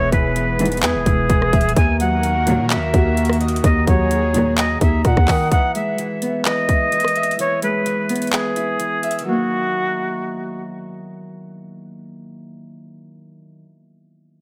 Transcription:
Already playing: 808-style bass E1, harp E3 G#3 B3 E4 E5, analog synth pad E3 B3 G#4 B4
0.12 808-style bass E1, harp G#3, flute B4, kick, closed hi-hat
0.36 harp E3, closed hi-hat
0.59 string section B1 G#2 E3, harp B3, closed hi-hat
0.66 closed hi-hat
0.72 closed hi-hat
0.77 closed hi-hat
0.82 808-style bass E2, harp E3, flute G#4, clap, closed hi-hat
0.95 808-style bass E1
1.06 808-style bass E1, harp E4, kick, closed hi-hat
1.30 808-style bass E1, harp E3, kick, closed hi-hat
1.42 cross-stick
1.53 808-style bass D#1, harp E5, kick, closed hi-hat
1.61 closed hi-hat
1.69 closed hi-hat
1.76 808-style bass D#2, analog synth pad D#3 A#3 F#4 A#4, harp D#3, flute G#5, kick, closed hi-hat
2.00 harp F#3, flute F#5, closed hi-hat
2.23 harp D#3, closed hi-hat
2.47 string section D#2 A#2 F#3, harp A#3, closed hi-hat
2.59 808-style bass A#2
2.70 harp D#3, flute E5, clap, closed hi-hat
2.76 808-style bass D#2
2.94 808-style bass D#2, harp F#4, kick, closed hi-hat
3.17 harp D#3, closed hi-hat
3.25 closed hi-hat
3.30 cross-stick, closed hi-hat
3.41 harp D#5, closed hi-hat
3.48 closed hi-hat
3.56 closed hi-hat
3.64 808-style bass D#2, harp D#3, analog synth pad G#4, flute D#5, kick, closed hi-hat
3.87 808-style bass D#2, harp F#3, flute C#5, kick, closed hi-hat
4.11 harp D#3, closed hi-hat
4.34 string section D#2 A#2 F#3, harp A#3, closed hi-hat
4.58 harp D#3, flute D#5, clap, closed hi-hat
4.81 808-style bass D#2, harp D#4, flute E5, kick, closed hi-hat
5.05 808-style bass A#2, harp D#3, flute F#5, kick, cross-stick, closed hi-hat
5.17 808-style bass D#2, kick, cross-stick
5.28 808-style bass D#3, harp D#5, kick, clap, open hi-hat
5.51 harp E3, flute F#5, kick, closed hi-hat
5.75 harp G#3, flute E5, closed hi-hat
5.98 harp E3, closed hi-hat
6.22 harp B3, closed hi-hat
6.45 harp E3, flute D#5, clap, closed hi-hat
6.69 harp E4, kick, closed hi-hat
6.92 harp E3, closed hi-hat
7.00 closed hi-hat
7.05 cross-stick, closed hi-hat
7.16 harp E5, closed hi-hat
7.23 closed hi-hat
7.31 closed hi-hat
7.39 harp E3, flute C#5, closed hi-hat
7.62 harp G#3, flute B4, closed hi-hat
7.86 harp E3, closed hi-hat
8.09 harp B3, closed hi-hat
8.16 closed hi-hat
8.22 closed hi-hat
8.27 closed hi-hat
8.33 harp E3, flute G#4, clap, closed hi-hat
8.56 harp E4, closed hi-hat
8.80 harp E3, closed hi-hat
9.03 harp E5, closed hi-hat
9.11 closed hi-hat
9.19 harp D#3, closed hi-hat
9.25 harp F#3, flute F#4
9.29 harp A#3 D#4

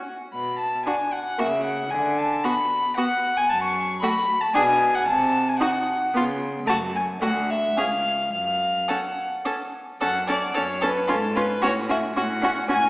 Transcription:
0.34 cello B2, violin B5
0.59 violin A5
0.86 viola D4, violin F#4 G#5
1.12 violin F#5
1.38 cello C#3, viola A#3, violin F#4 E5
1.64 violin F#5
1.90 cello D3, violin G#5
2.18 violin A5
2.44 viola B3, violin F#4 B5
2.97 viola B3, violin F#4 F#5
3.37 violin G#5
3.49 cello F#2, violin A5
3.62 violin C#6
4.02 viola A3, violin F#4 B5
4.41 violin A5
4.54 cello B2, viola D4, violin G#4 G#5
4.95 violin F#5
5.07 cello C3, violin A5
5.48 violin G#5
5.59 viola D#4, violin F#4 F#5
6.14 cello C#3, viola B3, violin F4
6.66 cello F#2, viola A3, violin F#4 A5
6.95 violin G#5
7.21 cello D2, viola A3, violin F#4 F#5
7.50 violin E5
7.77 cello C#2, viola C#4, violin G#4 F5
8.32 cello F#2, violin F5
8.88 viola C#4, violin A4 F#5
9.45 viola C#4, violin A4
10.00 cello F#2, viola C#4, violin A4 F#5
10.28 viola C#4, violin A4 D5
10.54 cello F#2, viola C#4, violin A4 C#5
10.81 viola C#4, violin A4 B4
11.08 cello G#2, viola C#4, violin F4 A4
11.35 viola C#4, violin F4 B4
11.62 cello A2, viola C#4, violin F#4 C#5
11.89 viola C#4, violin F#4 E5
12.16 cello A2, viola C#4, violin F#4 F#5
12.42 viola C#4, violin F#4
12.68 cello A2, viola C#4, violin F#4 G#5

